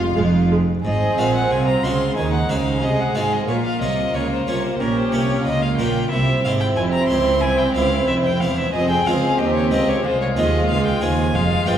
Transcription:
Already playing: G#3 C4 F4 F5
0.17 F1 F2 G#3
0.51 G#3
0.84 G#1 G#2 C4 G#4 C5 D#5
1.18 A#1 A#2 G#3 C4 F#4 F5
1.35 F#5
1.51 C2 C3 F4 G#4 G#5
1.68 A#5
1.84 C#2 C#3 G#3 C4 F#4 C6
2.16 D#2 D#3 G#3 D#4 G#5
2.34 F#5
2.49 C#2 C#3 G#3 C4 F#4 F5
2.82 C2 C3 G#3 F#4 G#4 D#5
3.00 F#5
3.15 G#1 G#2 G#3 C4 F#4 F5
3.33 D#5
3.48 A#1 A#2 A#3 F4 A#4 C#5
3.65 F5
3.81 C2 C3 C#4 F4 D#5
4.14 C#2 C#3 A#3 F4 C#5
4.32 C5
4.47 C2 C3 C#4 F4 C#5
4.64 C5
4.78 A#1 A#2 C#4 G4 A#4
4.98 C5
5.12 C2 C3 A#3 C#4 G4 C#5
5.45 C#2 C#3 A#3 F4 A#4 D#5
5.62 F5
5.77 A#1 A#2 A#3 C#4 G4 G5
6.11 C2 C3 C4 E4 G4 E5
6.45 G#1 G#2 C4 G4 F5
6.60 G5
6.76 F1 F2 G4 G#5
6.93 A#5
7.08 C#2 C4 G4 C6
7.41 C2 C5 G#5
7.58 G5
7.75 C#2 C4 G4 F5
8.07 F1 F2 E5
8.25 G5
8.40 E1 E2 C4 G4 F5
8.58 E5
8.72 F1 F2 C4 G#4 D#5
8.90 G5
9.06 C#2 G#3 C4 F4 F5
9.38 D#2 G4 A#4 D#5
9.56 C#5
9.71 C#2 G#3 C4 F4 D#5
9.89 C#5
10.02 C2 G#3 F4 G#4 C5
10.22 C#5
10.36 D#2 G#3 C4 F4 D#5
10.69 C#2 F5
10.86 G5
11.01 D#2 G#3 C4 F4 G#5
11.33 F1 F2 G#3 F4 G#4 F5
11.66 G1 G2 G#3 C4 F4 G5

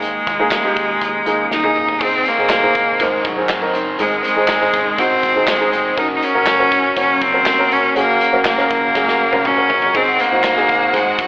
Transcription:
Already playing: D#2 D#3 G#3 A#3 D#4 G#4
0.02 closed hi-hat
0.27 D#2, kick, closed hi-hat
0.39 A#3 D#4 G#4
0.51 snare, clap, closed hi-hat
0.64 A#3 D#4 G4
0.76 D#2, kick, closed hi-hat
1.01 D#2, kick, closed hi-hat
1.26 D#2 A#3 D#4 G#4, closed hi-hat
1.51 D#2 D#4, snare
1.64 A#3 D#4 G#4, high tom
1.76 G1, mid tom
1.89 floor tom
2.00 G#1 G#2 G#3 C4 D#4 G#4 C5, kick, crash
2.25 A#3 C4 D#4 C5, closed hi-hat
2.38 G#1 C4 D#4 G#4
2.49 G#1 G#3 C4 D#4 C5, snare, clap, closed hi-hat
2.63 C4 D#4 G#4
2.75 G#1, kick, closed hi-hat
3.00 G#1 G#3 C4 D#4 A#4 C5, kick, closed hi-hat
3.25 G#1 F#3, kick, closed hi-hat
3.37 C4 D#4 G#4
3.49 G#1 G#3 C4 D#4 C5, snare, clap, closed hi-hat
3.62 C4 D#4 A#4
3.74 F#1 C4 D#4 C5, closed hi-hat
3.98 G#1 G#2 G#3 C4 D#4 G#4 C5, closed hi-hat
4.23 G#3 C4 D#4 C5, closed hi-hat
4.36 G#1 C4 D#4 G#4
4.48 G#1 G#3 C4 D#4 C5, snare, clap, closed hi-hat
4.61 C4 D#4 G#4, snare
4.73 G#1, kick, closed hi-hat
4.98 G#1 G#3 C4 D#4 F#4 C5, kick, closed hi-hat
5.23 G#1, kick, closed hi-hat
5.35 C4 D#4 G#4
5.47 G#1 G#3 C4 D#4 C5, snare, clap, closed hi-hat
5.60 C4 D#4 G#4
5.72 F1 C4 D#4 C5, closed hi-hat
5.97 F#1 F#3 A#3 C#4 D#4 F#4 A#4, kick, closed hi-hat
6.17 D#4
6.21 C#4 F#4 A#4, closed hi-hat
6.34 F#1 C#4 F#4 A#4
6.46 F#1 A#3 C#4 F#4 A#4, snare, clap, closed hi-hat
6.59 C#4 F#4 A#4
6.71 F#1 C#4 F#4 A#4, kick, closed hi-hat
6.96 F#1 F#3 A#3 C#4 F#4 A#4 C#5, kick, closed hi-hat
7.22 F#1 C4, kick, closed hi-hat
7.33 C#4 F#4 A#4
7.45 F#1 A#3 C#4 F#4 A#4, snare, clap, closed hi-hat
7.59 C#4 F#4 A#4
7.71 F1 C#4, closed hi-hat
7.95 F#1 F#3 A#3 C#4 F#4 G#4 A#4, closed hi-hat
8.20 C#4 F#4 A#4, closed hi-hat
8.33 F#1 C#4 F#4 A#4
8.45 F#1 A#3 C#4 F#4 A#4, snare, clap, closed hi-hat
8.58 C#4 F#4 A#4, snare
8.70 F#1, kick, closed hi-hat
8.95 F#1 F#3 A#3 C#4 F#4 G#4 A#4, kick, snare
9.08 snare
9.20 F#1
9.32 C#4 F#4 A#4, high tom
9.44 F#1 A#3 C#4 F#4 A#4, mid tom
9.57 C#4 F#4 A#4
9.69 F#1 C#4 F#4 A#4, floor tom
9.82 floor tom
9.94 G#1 G#2 G#3 C4 D#4 F#4 G#4 C5 F#5, kick, splash
10.19 A#3 C4 D#4 C5, closed hi-hat
10.31 G#1 C4 D#4 F#4
10.43 G#1 G#3 C4 D#4 C5, snare, clap, closed hi-hat
10.56 C4 D#4 G#4, snare
10.69 G#1, kick, closed hi-hat
10.93 G#1 G#3 C4 D#4 G#4 C5, kick, closed hi-hat
11.19 G#1 F#3, kick, closed hi-hat

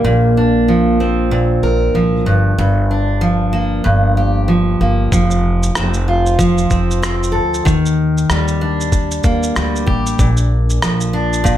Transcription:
Already playing: D#3 G3 A#3 D4 A#4
0.04 A#1 A#2
0.37 D4
0.68 F3
1.00 C4
1.31 A#2
1.63 A#1 A#4
1.94 C2 F3
2.26 G1 G2
2.58 G1 G2
2.91 D4
3.21 F3
3.53 A#3
3.84 G1 G2
4.17 G4
4.48 F3
4.81 G1 A#3
5.12 F1 F3, kick, shaker
5.31 shaker
5.63 shaker
5.75 F1 C4, cross-stick, shaker
5.94 shaker
6.08 F4
6.26 shaker
6.39 F3, kick, shaker
6.58 shaker
6.70 F1 C4, kick, shaker
6.91 shaker
7.02 C4, cross-stick, shaker
7.23 shaker
7.32 D2 A4
7.54 shaker
7.65 D#2 D#3, kick, shaker
7.86 shaker
8.18 shaker
8.30 D#2 G3, cross-stick, shaker
8.48 shaker
8.61 D4
8.81 shaker
8.92 kick, shaker
9.11 shaker
9.23 D#2 A#3, kick, shaker
9.43 shaker
9.56 D2 G3, cross-stick, shaker
9.76 shaker
9.86 A1 G4, kick
10.06 shaker
10.19 A#1 A#2, kick, shaker
10.37 shaker
10.70 shaker
10.82 A#1 F3, cross-stick, shaker
11.01 shaker
11.13 D4
11.33 shaker
11.44 A#2, kick, shaker

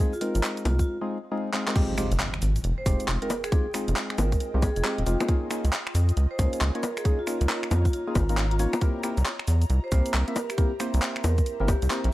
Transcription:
0.00 G#3 C4 D#4 F4 G#4
0.13 F4, cabasa
0.21 G#3 C4 D#4 F4 A#4, open hi-hat
0.35 G#1, closed hi-hat, cabasa
0.43 clap, cabasa
0.57 closed hi-hat, cabasa
0.65 C2 F4, open hi-hat, high bongo
0.79 F4, kick, closed hi-hat, cabasa
1.01 G#3 C4 D#4 F4 G#4
1.31 G#3 C4 D#4 F4 G#4
1.54 G#3 C4 D#4 F4 G#4, clap
1.68 G#3 C4 D#4 F4 A#4, clap
1.76 G#3 C4 D#4 F4 G4, kick, closed hi-hat, crash, impact, cabasa
1.90 G5
1.98 G#3 C4 D#4 F4 G4 D#5, finger snap, open hi-hat, cabasa
2.05 G#4
2.12 F1, closed hi-hat, cabasa
2.20 clap, cabasa
2.34 finger snap, closed hi-hat
2.42 G#1, open hi-hat, cabasa
2.56 closed hi-hat, cabasa
2.64 F1, closed hi-hat, cabasa
2.78 C5
2.86 F1 G#3 C4 D#4 F4 G4 C5, kick, open hi-hat, cabasa
3.00 closed hi-hat, cabasa
3.08 F1, clap, cabasa
3.22 G#3 C4 D#4 F4 A#4, closed hi-hat
3.30 A#4, open hi-hat, high bongo, cabasa
3.44 G#4, finger snap, closed hi-hat, cabasa
3.52 G#3 C4 D#4 F4 G4 G#4, kick, closed hi-hat, cabasa
3.74 G#3 C4 D#4 F4 G#4, finger snap, open hi-hat, cabasa
3.88 F1, closed hi-hat, cabasa
3.96 clap, cabasa
4.10 finger snap, closed hi-hat
4.18 G#1 A#4, open hi-hat, high bongo, cabasa
4.32 kick, closed hi-hat, cabasa
4.40 closed hi-hat, cabasa
4.54 C2 G#3 C4 D#4 F4 G4
4.62 G#4, kick, open hi-hat, high bongo, cabasa
4.76 F1 G#4, closed hi-hat, cabasa
4.84 G#3 C4 D#4 F4 G4, clap, open hi-hat, cabasa
4.98 D#1, closed hi-hat
5.06 F1 G#3 C4 D#4 F4 G4, open hi-hat, cabasa
5.20 G#3 C4 D#4 F4 G#4, finger snap, closed hi-hat, high bongo, cabasa
5.28 A#3 C#4 D#4 F4 G#4, kick, closed hi-hat, cabasa
5.36 C#5
5.51 A#3 C#4 D#4 F4 G#4, finger snap, open hi-hat, cabasa
5.62 C#2 A#5, closed hi-hat, cabasa
5.73 clap, cabasa
5.87 finger snap, closed hi-hat
5.95 F2, open hi-hat, cabasa
6.09 closed hi-hat, cabasa
6.17 C#2, closed hi-hat, cabasa
6.31 C5
6.39 C#2 A#3 C#4 D#4 F4 G#4 C5, kick, open hi-hat, cabasa
6.53 closed hi-hat, cabasa
6.61 C#2, clap, cabasa
6.75 A#3 C#4 D#4 F4 A#4 C#5, closed hi-hat
6.83 A#4, open hi-hat, high bongo, cabasa
6.97 G#4, finger snap, closed hi-hat, cabasa
7.05 A#3 C#4 D#4 F4 G#4, kick, closed hi-hat, cabasa
7.19 F4
7.27 A#3 C#4 D#4 F4 A#4, finger snap, open hi-hat, cabasa
7.41 C#2, closed hi-hat, cabasa
7.49 clap, cabasa
7.63 finger snap, closed hi-hat
7.71 F2 F4, open hi-hat, high bongo, cabasa
7.85 F4, kick, closed hi-hat, cabasa
7.93 F4, closed hi-hat, cabasa
8.07 A#3 C#4 D#4 F4 G#4
8.15 G#1, kick, open hi-hat, high bongo, cabasa
8.29 A#3 C#4 D#4 F4 A#4, closed hi-hat, cabasa
8.37 clap, open hi-hat, cabasa
8.51 F4, closed hi-hat
8.59 A#3 C#4 D#4 F4 C#5, open hi-hat, cabasa
8.73 finger snap, closed hi-hat, high bongo, cabasa
8.81 A#3 C4 E4 G4 A#4, kick, closed hi-hat, cabasa
8.98 C5
9.03 A#3 C4 E4 G4 A#4, finger snap, open hi-hat, cabasa
9.17 C2 E5, closed hi-hat, cabasa
9.26 clap, cabasa
9.39 finger snap, closed hi-hat
9.48 E2, open hi-hat, cabasa
9.62 closed hi-hat, cabasa
9.70 C2, closed hi-hat, cabasa
9.84 C5
9.92 C2 A#3 C4 E4 G4 A#4 C5, kick, open hi-hat, cabasa
10.06 closed hi-hat, cabasa
10.14 C2, clap, cabasa
10.28 A#3 C4 E4 G4 A#4 E5, closed hi-hat
10.36 A#4, open hi-hat, high bongo, cabasa
10.50 G4, finger snap, closed hi-hat, cabasa
10.58 A#3 C4 E4 G4 A#4, kick, closed hi-hat, cabasa
10.80 A#3 C4 E4 G4 C5, finger snap, open hi-hat, cabasa
10.94 C2, closed hi-hat, cabasa
11.02 clap, cabasa
11.16 finger snap, closed hi-hat
11.24 E2 A#4, open hi-hat, high bongo, cabasa
11.38 kick, closed hi-hat, cabasa
11.46 closed hi-hat, cabasa
11.60 G1 A#3 C4 E4 G4 A#4
11.68 G4, kick, open hi-hat, high bongo, cabasa
11.82 C2 G4, closed hi-hat, cabasa
11.90 A#3 C4 E4 G4 A#4, clap, open hi-hat, cabasa
12.04 A#1, closed hi-hat

